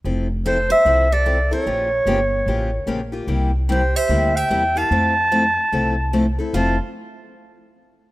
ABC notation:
X:1
M:4/4
L:1/8
Q:"Swing" 1/4=148
K:F
V:1 name="Clarinet"
z2 c e2 d2 _d- | _d6- d z | z2 c e2 g2 a- | a6- a z |
a z6 z |]
V:2 name="Steel-string acoustic guitar"
z2 A c2 A2 B- | B6- B z | z2 G c2 e2 f- | f6- f z |
F z6 z |]
V:3 name="Steel-string acoustic guitar"
[F,CEA] z [F,CEA] z [F,CEA] z [F,CEA] [CEA] | [_D,F,B,FG] z [D,F,B,FG] z [D,F,B,FG] z [D,F,B,FG] [B,FG] | [C,G,B,EG] z [C,G,B,EG] z [C,G,B,EG] z [C,G,B,EG] [B,EG] | [F,A,CEA] z [F,A,CEA] z [F,A,CEA] z [F,A,CEA] [CEA] |
[F,A,CEA] z6 z |]
V:4 name="Upright bass" clef=bass
F,,,4 C,,4 | B,,,2 G,,,2 A,,,2 B,,,2 | C,,4 D,,2 E,,2 | F,,4 C,,4 |
F,,, z6 z |]